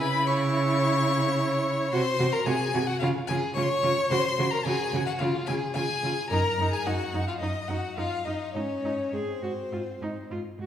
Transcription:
Already playing: C#3 E4
0.01 B4 B5
0.27 E4 C#5 C#6
1.92 C3 F#4 C5 C6
2.19 C3 F#4
2.32 A#4 A#5
2.46 C3 F#4 G#4 G#5
2.74 C3 F#4
2.87 F#4 F#5
2.99 C#3 F4 F5
3.27 C#3 F4 G#4 G#5
3.54 C#3 F4 C#5 C#6
3.63 C6
3.69 C#6
3.83 C#3 F4
4.10 C#3 F#4 C5 C6
4.39 C#3 F#4
4.51 A#4 A#5
4.65 C#3 F#4 G#4 G#5
4.93 C#3 F#4
5.06 F#4 F#5
5.18 C#3 F4 F5
5.46 C#3 F4 G#4 G#5
5.74 C#3 F4 G#4 G#5
6.03 C#3 F4
6.30 F#2 D#4 A#4 A#5
6.58 F#2 D#4
6.71 G#4 G#5
6.86 F#2 D#4 F#4 F#5
7.14 F#2 D#4
7.27 F4 F5
7.40 F#2 D#4 D#5
7.68 F#2 D#4 F#4 F#5
7.96 F#2 D#4 F4 F5
8.25 F#2 D#4 D#5
8.54 G#2 C#4 D#4 C#5
8.83 G#2 D#4
9.12 G#2 C4 G#4 C5
9.42 G#2 F#4
9.72 G#2 F4
10.01 G#2 D#4
10.31 G#2 F4
10.59 G#2 F#4

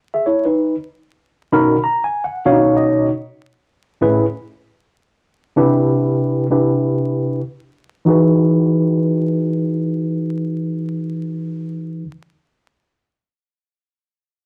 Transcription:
0.14 G#4 E5
0.26 E4 C#5
0.45 D#4 B4
1.52 B2 C#4 D#4 F#4 A#4 B5
1.84 A#5
2.04 G#5
2.24 F#5
2.45 B2 C#4 D4 F#4 C#5 F5
2.52 D#4
2.77 D#5
4.01 A2 C#4 E4 G#4 B4
5.56 C3 D4 E4 G4 B4
6.50 C3 D4 E4 G4 B4
8.05 E3 D#4 F#4 G#4
8.10 B4

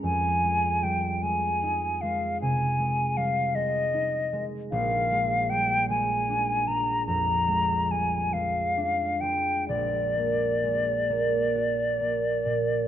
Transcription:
Already playing: G#3
0.03 F2 G#5
0.44 G#3
0.83 G3 G5
1.23 G#3 G#5
1.63 D#4
2.01 G#3 F5
2.42 C3 G#5
2.79 G#3
3.17 G3 F5
3.55 G#3 D#5
3.94 D#4
4.33 G#3
4.72 A#1 F5
5.11 G#3
5.50 G3 G5
5.89 G#3 G#5
6.29 D4
6.68 G#3 A#5
7.06 F2 A#5
7.48 G#3
7.91 G3 G#5
8.33 G#3 F5
8.77 D4
9.21 G#3 G5
9.69 A#1 D5
10.16 A#3
10.64 G#3
11.10 A#3
11.55 F#4
12.01 A#3
12.45 A#2

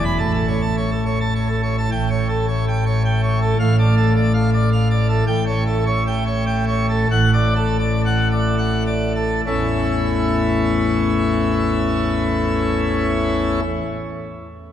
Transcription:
Already playing: E1 E2
0.04 B5
0.18 A1 A2 A5
0.34 A4
0.48 C#5
0.62 A5
0.77 C#5
0.91 A4
1.06 C#5
1.20 A5
1.35 C#5
1.48 A4
1.63 C#5
1.78 A5
1.91 A1 A2 G5
2.10 C#5
2.29 A4
2.48 C#5
2.68 G5
2.86 C#5
3.05 G5
3.23 C#5
3.42 A4
3.59 A1 A2 F5
3.79 D5
3.97 A4
4.16 D5
4.34 F5
4.54 D5
4.73 F5
4.91 D5
5.09 A4
5.27 A1 A2 G5
5.46 C#5
5.67 A4
5.86 C#5
6.07 G5
6.26 C#5
6.46 G5
6.68 C#5
6.89 A4
7.11 A1 A2 F#5
7.33 D5
7.56 A4
7.79 D5
8.05 F#5
8.31 D5
8.59 F#5
8.87 D5
9.15 A4
9.47 A1 E2 E3 A3 C#4 E4

